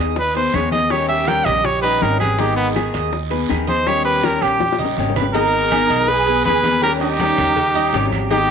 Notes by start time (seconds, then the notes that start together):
Already playing: D#3 G#3 B3 D#4 G#4 D#5
0.00 D#2
0.16 B4, muted nylon-string guitar stroke, high bongo, high conga, long guiro
0.35 B3 D#4 G#4 B4 C5, high bongo, high conga
0.53 D#2 D#3 G#3 B3 D#4 G#4 C#5, high bongo, low bongo, high conga, short guiro, claves
0.71 B3 D#4 G#4 D#5, high bongo, high conga, short guiro
0.90 D#3 G3 C#4 G4 C#5, high bongo, high conga, long guiro, claves
1.09 G4 E5, high conga
1.27 D#3 G3 C#4 G4 A#4 G5, high bongo, high conga, short guiro
1.45 A#1 G4 D#5, high bongo, high conga, low conga, short guiro, claves
1.65 C#5, muted nylon-string guitar stroke, high bongo, high conga, low conga, long guiro
1.82 G3 C#4 D#4 G4 B4, high bongo, high conga
2.01 G#1 D#3 G3 C#4 G4 A#4, high bongo, low bongo, high conga, short guiro
2.19 G3 C#4 G4 G#4 B4, high bongo, high conga, short guiro, claves
2.38 D#3 G#3 B3 D#4 G4 G#4, high bongo, long guiro
2.56 B3, high conga
2.75 D#3 G#3 B3 D#4 G#4, high bongo, high conga, short guiro, claves
2.94 D#2 D#5, high bongo, high conga, short guiro
3.12 muted nylon-string guitar stroke, high bongo, high conga, long guiro
3.30 B3 D#4 G#4 B4, high bongo, high conga
3.49 D#2 D#3 G#3 B3 D#4 G#4, high bongo, low bongo, high conga, short guiro, claves
3.67 B3 D#4 G#4 C5 D#5, high bongo, high conga, short guiro
3.86 D#3 G3 C#4 G4 C#5, high bongo, high conga, long guiro, claves
4.05 G4 B4, high conga
4.23 D#3 G3 C#4 G4 A#4, high bongo, high conga, short guiro
4.41 A#1 G4, high bongo, high conga, short guiro, claves
4.60 muted nylon-string guitar stroke, high bongo, high conga, long guiro
4.72 high bongo
4.79 G3 C#4 D#4 G4, low conga
4.85 low bongo
4.97 G#1 D#3 G3 C#4 G4, low conga, short guiro
5.10 low bongo
5.16 G3 C#4 G4 B4, low conga, short guiro, claves
5.22 low bongo
5.34 D#3 G#3 B3 D#4 G#4 A#4, cowbell, high conga, long guiro
5.53 high conga
5.71 D#3 G#3 B3 D#4 G#4, cowbell, high conga, short guiro, claves
5.89 B1 D#4, cowbell, high conga, short guiro
6.08 G#4 B4, muted nylon-string guitar stroke, cowbell, high conga, long guiro
6.26 B3 D#4 G#4, high conga
6.44 D#2 D#3 G#3 B3 D#4 G#4 B4, cowbell, high conga, short guiro, claves
6.63 B3 D#4 G#4 A#4, cowbell, high conga, short guiro
6.82 D#3 G3 C#4 G4 A#4, cowbell, high conga, claves
6.99 D#4 G4 D#5, high conga
7.19 D#3 G3 C#4 G4, cowbell, high conga, short guiro
7.38 D#2 A#4, high conga, low conga, short guiro, claves
7.56 muted nylon-string guitar stroke, cowbell, high conga, low conga
7.74 G3 C#4 D#4 G4, high conga
7.93 G#1 D#3 G3 C#4 G4, cowbell, short guiro
8.11 G3 C#4 G4, high conga, short guiro, claves
8.30 D#3 G#3 B3 D#4 G4, cowbell, high conga, long guiro